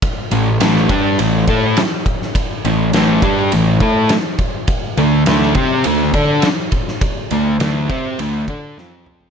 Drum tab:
RD |x-x-x-x-x-x-x-x-|x-x-x-x-x-x-x-x-|x-x-x-x-x-x-x-x-|x-x-x-x-x-x-----|
SD |----oo------o--o|----o-------o---|----oo------o--o|----o-------o---|
T2 |----------------|----------------|----------------|--------------o-|
FT |----------------|----------------|----------------|---------------o|
BD |o-----o---o---o-|o-----o---o---o-|o-----o---o---o-|o-----o---o-----|